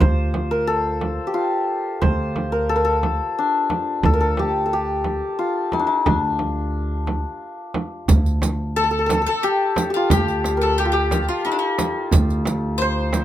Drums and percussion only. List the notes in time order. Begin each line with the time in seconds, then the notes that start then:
0.00 frame drum
0.34 frame drum
1.01 frame drum
2.02 frame drum
2.36 frame drum
3.03 frame drum
3.70 frame drum
4.03 frame drum
4.37 frame drum
5.04 frame drum
5.72 frame drum
6.06 frame drum
6.39 frame drum
7.07 frame drum
7.74 frame drum
8.08 riq, frame drum, tombak dum
8.25 riq, tombak ka
8.42 riq, tombak tek, frame drum
8.77 riq
9.09 riq, tombak tek, frame drum
9.43 riq, tombak ka
9.76 riq, tombak tek, frame drum
10.10 riq, frame drum, tombak dum
10.28 riq
10.44 riq, tombak tek
10.79 riq
11.11 riq, tombak tek, frame drum
11.45 riq, tombak ka
11.78 riq, tombak tek, frame drum
12.12 riq, tombak dum, frame drum
12.29 riq, tombak ka
12.45 riq, tombak tek, frame drum
12.81 riq
13.13 riq, tombak tek, frame drum